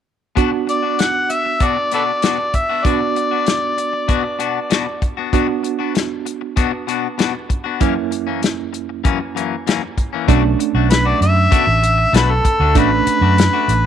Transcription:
0.35 B2 B3 D4 F#4, kick, closed hi-hat
0.52 muted clean electric guitar stroke
0.67 D5, muted clean electric guitar stroke, closed hi-hat
0.82 B3 D4 F#4
0.98 F#5, muted clean electric guitar stroke, snare, closed hi-hat
1.30 E5, muted clean electric guitar stroke, closed hi-hat
1.45 muted clean electric guitar stroke
1.60 B2 B3 D4 F#4, kick, closed hi-hat
1.64 D5
1.77 muted clean electric guitar stroke
1.91 B2 B3 D4 F#4 A4 B4 D5, closed hi-hat
2.22 B2 B3 D4 F#4, snare, closed hi-hat
2.38 muted clean electric guitar stroke
2.54 E5, muted clean electric guitar stroke, kick, closed hi-hat
2.69 B3 D4 F#4
2.85 B2 B3 D4 F#4 D5, kick, closed hi-hat
3.01 muted clean electric guitar stroke
3.16 muted clean electric guitar stroke, closed hi-hat
3.31 B3 D4 F#4
3.46 muted clean electric guitar stroke, snare, closed hi-hat
3.78 muted clean electric guitar stroke, closed hi-hat
3.93 muted clean electric guitar stroke
4.08 B2 B3 D4 F#4, kick, closed hi-hat
4.24 muted clean electric guitar stroke
4.39 B2 B3 D4 F#4, closed hi-hat
4.70 B2 B3 D4 F#4, snare, closed hi-hat
4.86 muted clean electric guitar stroke
5.02 muted clean electric guitar stroke, kick, closed hi-hat
5.17 B3 D4 F#4
5.33 B2 B3 D4 F#4, kick, closed hi-hat
5.48 muted clean electric guitar stroke
5.63 muted clean electric guitar stroke, closed hi-hat
5.79 B3 D4 F#4
5.94 muted clean electric guitar stroke, snare, closed hi-hat
6.25 muted clean electric guitar stroke, closed hi-hat
6.41 muted clean electric guitar stroke
6.56 B2 B3 D4 F#4, kick, closed hi-hat
6.72 muted clean electric guitar stroke
6.87 B2 B3 D4 F#4, closed hi-hat
7.18 B2 B3 D4 F#4, snare, closed hi-hat
7.34 muted clean electric guitar stroke
7.49 muted clean electric guitar stroke, kick, closed hi-hat
7.64 B3 D4 F#4
7.80 F#2 E3 A#3 C#4 E4, kick, closed hi-hat
7.95 muted clean electric guitar stroke
8.11 muted clean electric guitar stroke, closed hi-hat
8.27 E3 A#3 C#4
8.42 muted clean electric guitar stroke, snare, closed hi-hat
8.73 muted clean electric guitar stroke, closed hi-hat
8.89 muted clean electric guitar stroke
9.04 F#2 E3 A#3 C#4, kick, closed hi-hat
9.20 muted clean electric guitar stroke
9.35 F#2 E3 A#3 C#4, closed hi-hat
9.67 F#2 E3 A#3 C#4, snare, closed hi-hat
9.83 muted clean electric guitar stroke
9.98 muted clean electric guitar stroke, kick, closed hi-hat
10.13 E3 A#3 C#4
10.28 B1 B2 A3 C#4 D4 F#4, kick, closed hi-hat
10.44 muted clean electric guitar stroke
10.59 muted clean electric guitar stroke, closed hi-hat
10.74 B1 A3 D4 F#4
10.90 B4, muted clean electric guitar stroke, snare, closed hi-hat
11.05 A3 D4 F#4 D5
11.21 F#2 E5, closed hi-hat
11.36 muted clean electric guitar stroke
11.51 B2 A3 D4 F#4, kick, closed hi-hat
11.67 A1, muted clean electric guitar stroke
11.83 muted clean electric guitar stroke, closed hi-hat
11.98 muted clean electric guitar stroke
12.13 B1 B2 A3 D4 F#4 B4, snare, closed hi-hat
12.31 A4
12.44 muted clean electric guitar stroke, kick, closed hi-hat
12.60 D2 A3 D4 F#4
12.75 A1 B2 A3 C#4 D4 F#4 B4, kick, closed hi-hat
12.92 muted clean electric guitar stroke
13.07 muted fingered electric bass stroke, muted clean electric guitar stroke, closed hi-hat
13.21 F#2 A3 D4 F#4
13.38 muted clean electric guitar stroke, snare, closed hi-hat
13.53 A3 D4 F#4
13.68 A1, closed hi-hat

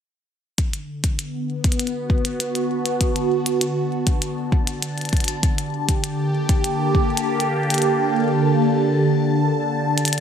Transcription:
0.58 D3, kick, closed hi-hat
0.73 closed hi-hat
1.03 B3, kick, closed hi-hat
1.19 closed hi-hat
1.64 kick, closed hi-hat
1.72 F#4, closed hi-hat
1.80 closed hi-hat
1.87 closed hi-hat
2.10 kick
2.25 closed hi-hat
2.40 A5, closed hi-hat
2.55 closed hi-hat
2.86 closed hi-hat
3.01 kick, closed hi-hat
3.16 closed hi-hat
3.46 closed hi-hat
3.61 closed hi-hat
4.07 kick, closed hi-hat
4.22 closed hi-hat
4.52 kick
4.67 closed hi-hat
4.83 closed hi-hat
4.98 closed hi-hat
5.01 closed hi-hat
5.05 closed hi-hat
5.09 closed hi-hat
5.13 kick, closed hi-hat
5.17 closed hi-hat
5.20 closed hi-hat
5.24 closed hi-hat
5.28 closed hi-hat
5.43 kick, closed hi-hat
5.58 closed hi-hat
5.63 G4
5.89 kick, closed hi-hat
6.04 closed hi-hat
6.10 A#3
6.49 kick, closed hi-hat
6.64 closed hi-hat
6.95 kick
7.17 closed hi-hat
7.40 closed hi-hat
7.70 closed hi-hat
7.74 closed hi-hat
7.78 closed hi-hat
7.82 closed hi-hat
9.98 closed hi-hat
10.05 closed hi-hat
10.08 closed hi-hat
10.13 closed hi-hat

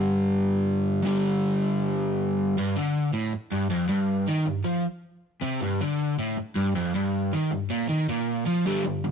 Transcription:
Already playing: G2 D3 G3 D4
1.03 G2 D3 G3
2.58 G2
2.76 D3
3.13 A2
3.33 muted overdriven electric guitar stroke
3.52 G2
3.70 F2
3.89 G2
4.28 D#3
4.46 G2
4.64 F3
5.41 C3
5.60 G2
5.81 D3
6.19 A2
6.37 muted overdriven electric guitar stroke
6.55 G2
6.75 F2
6.95 G2
7.33 D#3
7.51 G2
7.70 A#2
7.89 D#3
8.09 A#2
8.47 F3
8.66 G2 D3 G3
8.85 G2 D3
9.04 G2 D3

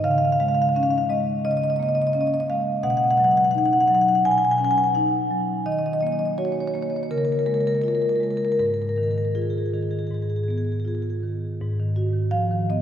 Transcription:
0.04 C#3 F5
0.11 F5
0.18 F5
0.25 F5
0.32 F5
0.40 G#3 F5
0.48 F5
0.55 F5
0.62 F5
0.69 F5
0.76 C#4 F5
0.83 F5
0.91 F5
0.98 F5
1.10 G#3 D#5
1.45 C#3 D#5
1.51 D#5
1.57 D#5
1.64 D#5
1.70 D#5
1.76 A#3 D#5
1.83 D#5
1.89 D#5
1.95 D#5
2.02 D#5
2.07 D#5
2.13 C#4 D#5
2.21 D#5
2.27 D#5
2.34 D#5
2.40 D#5
2.50 G#3 F5
2.83 B2 F#5
2.90 F#5
2.97 F#5
3.04 F#5
3.11 F#5
3.17 F#3 F#5
3.24 F#5
3.31 F#5
3.37 F#5
3.44 F#5
3.51 D#4 F#5
3.58 F#5
3.66 F#5
3.73 F#5
3.81 F#5
3.88 F#3 F#5
3.95 F#5
4.01 F#5
4.08 F#5
4.15 F#5
4.25 B2 G#5
4.31 G#5
4.38 G#5
4.45 G#5
4.51 G#5
4.58 C#4 G#5
4.64 G#5
4.71 G#5
4.78 G#5
4.84 G#5
4.95 D#4 F#5
5.30 F#3
5.66 D#3 D#5
5.72 D#5
5.79 D#5
5.86 D#5
5.93 D#5
6.01 A#3 D#5
6.07 D#5
6.12 D#5
6.19 D#5
6.25 D#5
6.38 F#4 C#5
6.45 C#5
6.52 C#5
6.60 C#5
6.68 C#5
6.74 A#3 C#5
6.83 C#5
6.90 C#5
6.96 C#5
7.03 C#5
7.11 C#3 A#4
7.18 A#4
7.25 A#4
7.32 A#4
7.39 A#4
7.46 G#3 A#4
7.54 A#4
7.61 A#4
7.67 A#4
7.75 A#4
7.82 F4 A#4
7.88 A#4
7.95 A#4
8.02 A#4
8.09 A#4
8.15 A#4
8.20 G#3 A#4
8.31 A#4
8.37 A#4
8.45 A#4
8.52 A#4
8.59 G#2 A#4
8.66 A#4
8.74 A#4
8.82 A#4
8.89 A#4
8.96 D#3 A#4
9.03 A#4
9.11 A#4
9.18 A#4
9.25 A#4
9.35 F4 G#4
9.42 G#4
9.50 G#4
9.58 G#4
9.66 G#4
9.74 D#3 G#4
9.83 G#4
9.91 G#4
9.99 G#4
10.07 G#4
10.11 G#2 G#4
10.22 G#4
10.30 G#4
10.36 G#4
10.44 G#4
10.48 B3 G#4
10.58 G#4
10.65 G#4
10.72 G#4
10.80 G#4
10.85 F4 G#4
10.95 G#4
11.02 G#4
11.10 G#4
11.23 D#3
11.61 G#2
11.79 D#3
11.96 F#4
12.13 D#3
12.31 F3 F5
12.51 D#3
12.70 B3 D#5

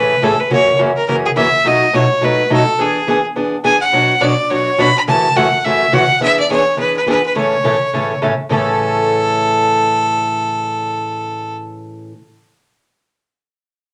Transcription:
Already playing: A2 C#3 E3 A3 C#4 G#4 B4
0.22 A2 C#3 E3 A3 C#4 G#4 A4
0.40 B4
0.50 F#2 C#3 E3 A#3 C#4 F#4 C#5
0.79 F#2 C#3 E3 A#3 C#4 F#4
0.97 A#4
1.08 F#2 C#3 E3 A#3 C#4 F#4 A#4
1.26 G#4
1.36 F#2 C#3 E3 A#3 C#4 F#4 E5
1.64 B2 F#3 A3 D#4 F#4 D#5
1.93 B2 F#3 A3 D#4 F#4 C#5
2.21 B2 F#3 A3 D#4 F#4 B4
2.50 B2 F#3 A3 D#4 F#4 A4
2.78 E3 B3 D4 G#4
3.07 E3 B3 D4 G#4
3.36 E3 B3 D4 G#4
3.64 E3 B3 D4 G#4 G#5
3.81 F#5
3.92 B2 F#3 B3 D4 F#4 C#5
4.21 B2 F#3 B3 D4 F#4 C#5 D5
4.49 B2 F#3 B3 D4 F#4 C#5
4.78 B2 F#3 B3 D4 F#4 C#5 B5
4.97 B5
5.07 F#2 C#3 E3 A3 C#4 F#4 A5
5.36 F#2 C#3 E3 A3 C#4 F#4 F#5
5.65 F#2 C#3 E3 A3 C#4 F#4 E5
5.92 F#2 C#3 E3 A3 C#4 F#4 F#5
6.20 E3 B3 D4 G#4 E5
6.39 D5
6.50 E3 B3 D4 G#4 C#5
6.77 E3 B3 D4 G#4 B4
6.97 B4
7.06 E3 B3 D4 G#4 B4
7.26 B4
7.35 A2 C#3 E3 A3 C#4 A4 C#5
7.64 A2 C#3 E3 A3 C#4 A4
7.93 A2 C#3 E3 A3 C#4 A4
8.22 A2 C#3 E3 A3 C#4 A4
8.49 A2 C#3 E3 A3 C#4 A4

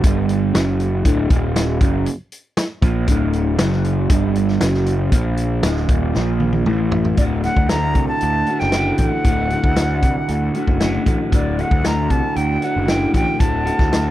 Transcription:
0.04 G1 G2 D3 G3, kick, closed hi-hat
0.29 closed hi-hat
0.53 F#1 F#2 C#3 F#3, snare, closed hi-hat
0.80 closed hi-hat
1.04 D1 D2 A2 D3, kick, closed hi-hat
1.29 D#1 D#2 A#2 D#3, kick, closed hi-hat
1.56 snare, closed hi-hat
1.80 F#1 F#2 C#3 F#3, kick, closed hi-hat
2.06 closed hi-hat
2.32 closed hi-hat
2.57 snare, closed hi-hat
2.82 A#1 A#2 F3 A#3, kick, closed hi-hat
3.08 D1 D2 A2 D3, kick, closed hi-hat
3.33 closed hi-hat
3.58 F#1 F#2 C#3 F#3, snare, closed hi-hat
3.72 snare
3.84 closed hi-hat
4.10 G1 G2 D3 G3, kick, closed hi-hat
4.35 closed hi-hat
4.48 snare
4.61 F#1 F#2 C#3 F#3, snare, closed hi-hat
4.74 snare
4.86 closed hi-hat
5.12 A#1 A#2 F3 A#3, kick, closed hi-hat
5.37 closed hi-hat
5.63 D1 D2 A2 D3, snare, closed hi-hat
5.76 snare
5.89 D#1 D#2 A#2 D#3, kick, closed hi-hat
6.14 A#1 A#2 F3 A#3, snare
6.40 high tom
6.53 high tom
6.66 A1 A2 E3 A3, mid tom
6.92 floor tom
7.05 floor tom
7.17 D1 D2 A2 D3 A3 F#4 D5, kick, closed hi-hat
7.43 D3 A3 F#4 F#5, snare, closed hi-hat
7.56 D2, kick
7.69 A2 D3 A3 F#4 A#5, snare, closed hi-hat
7.95 C2, kick, closed hi-hat
8.08 A5
8.21 D2, closed hi-hat
8.46 D3 A3 F#4, closed hi-hat
8.60 F#1 G5, snare
8.72 D2 A2 D3 A3 F#4, snare, closed hi-hat
8.98 A1 D3 A3 F#4 G5, kick, closed hi-hat
9.09 F#5
9.24 D1 D2 A2 D3 A3 F#4, kick, closed hi-hat
9.50 D3 A3 F#4, closed hi-hat
9.64 D2, kick
9.76 A2 D3 A3 F#4, snare, closed hi-hat
10.02 C2, kick, closed hi-hat
10.28 D2, closed hi-hat
10.54 D3 A3 F#4, closed hi-hat
10.67 F#1, kick
10.80 D2 A2 D3 A3 F#4, snare, closed hi-hat
11.05 A1 D3 A3 F#4, kick, closed hi-hat
11.32 D1 D2 A2 D3 A3 F#4 D5, kick, closed hi-hat
11.58 D3 A3 F#4 F#5, closed hi-hat
11.71 D2, kick
11.83 A2 D3 A3 F#4 A#5, snare, closed hi-hat
12.10 C2 A5, kick, closed hi-hat
12.36 D2 G5, closed hi-hat
12.62 D3 A3 F#4 F#5, closed hi-hat
12.76 F#1
12.87 D2 A2 D3 A3 F#4 G5, snare, closed hi-hat
13.14 A1 D3 A3 F#4 G5, kick, closed hi-hat
13.39 D1 D2 A2 D3 A3 F#4 A5, kick, closed hi-hat
13.65 D3 A3 F#4, closed hi-hat
13.79 D2, kick, snare
13.92 A2 D3 A3 F#4, snare, closed hi-hat

